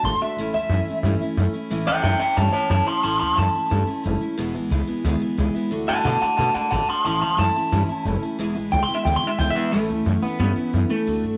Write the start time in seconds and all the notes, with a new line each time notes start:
0.03 G#1 D3 A3 D4 C6
0.07 F#4
0.20 D4 F#4 E5, muted upright bass stroke
0.25 A3
0.37 A1 A2 E3 A3 C#4 E4
0.53 D2 C#4 E4 E5
0.69 F#2 E3 A3 C#4
0.73 E4
0.87 A3 C#4 E4, muted upright bass stroke
1.03 G2 A2 E3 A3 C#4 E4
1.20 A3 C#4 E4, muted upright bass stroke
1.37 F#2 E3 A3 C#4 E4
1.53 A3 C#4 E4, muted upright bass stroke
1.70 A1 A2 E3 A3 C#4 E4
1.87 D2 A3 C#4 E4 E5 G5
2.03 F#2 E3 A3 C#4 E4 E5 G5
2.19 A3 C#4 E4 E5 G5, muted upright bass stroke
2.37 G2 A2 E3 A3 C#4 E4 C#5 A5
2.53 A3 C#4 E4 C#5 A5, muted upright bass stroke
2.70 F#2 E3 A3 C#4 E4 C#5 A5
2.86 A3 C#4 E4 A5 C6, muted upright bass stroke
3.03 A1 A2 E3 A3 C#4 E4 A5 C6
3.19 D2 A3 C#4 E4 A5 C6
3.37 F#2 E3 A3 C#4 E4 A5
3.55 A3 C#4 E4, muted upright bass stroke
3.70 G2 A2 E3 A3 C#4 E4
3.87 A3 C#4 E4, muted upright bass stroke
4.04 F#1 E3 A3 C#4 E4
4.21 A3 C#4 E4, muted upright bass stroke
4.37 E1 E2 B2 E3 G#3 B3 E4
4.54 A1 E3 G#3 B3 E4
4.70 C#2 E3 G#3 B3 E4
4.87 E3 G#3 B3 E4, muted upright bass stroke
5.04 D2 E2 B2 E3 G#3 B3 E4
5.21 E3 G#3 B3 E4, muted upright bass stroke
5.38 C#2 E3 G#3 B3 E4
5.54 E3 G#3 B3 E4, muted upright bass stroke
5.71 D2 D3 A3 D4 F#4
5.88 G2 A3 D4 F#4 F#5 A5
6.04 B2 D3 A3 D4 F#4 F#5 A5
6.22 A3 D4 F#4 F#5 A5, muted upright bass stroke
6.37 B2 D3 A3 D4 F#4 F#5 A5
6.54 A3 D4 F#4 F#5 A5, muted upright bass stroke
6.71 G#1 D3 A3 D4 F#4 F#5 A5
6.88 A3 D4 F#4 A5 C6, muted upright bass stroke
7.05 A1 A2 E3 A3 C#4 E4 A5 C6
7.22 D2 A3 C#4 E4 A5 C6
7.38 F#2 E3 A3 C#4 E4 A5
7.56 A3 C#4 E4, muted upright bass stroke
7.72 G2 A2 E3 A3 C#4 E4
7.88 A3 C#4 E4, muted upright bass stroke
8.05 F#1 E3 A3 C#4 E4
8.22 A3 C#4 E4, muted upright bass stroke
8.39 E1 E2 B2 E3 G#3 B3 E4
8.55 A1 E3 G#3 B3 E4
8.72 C#2 E3 G#3 B3 E4 G5
8.83 C6
8.89 E3 G#3 B3 E4, muted upright bass stroke
8.95 E5
9.05 D2 E2 B2 E3 G#3 B3 E4 G5
9.16 C6
9.22 E3 G#3 B3 E4, muted upright bass stroke
9.27 E5
9.39 C#2 E3 G#3 B3 E4 G5
9.50 E5
9.55 E3 G#3 B3 E4, muted upright bass stroke
9.72 A1 A2 E3 A3 C#4 E4
9.89 D2 A3 C#4 E4
10.05 F#2 E3 A3 C#4 E4
10.22 A3 B3 C#4 E4, muted upright bass stroke
10.39 G2 A2 E3 A3 B3 C#4 E4
10.56 A3 C#4 E4, muted upright bass stroke
10.72 F#2 E3 A3 C#4 E4
10.89 A3 C#4 E4, muted upright bass stroke
11.07 D2 D3 A3 D4 F#4
11.23 G2 A3 D4 F#4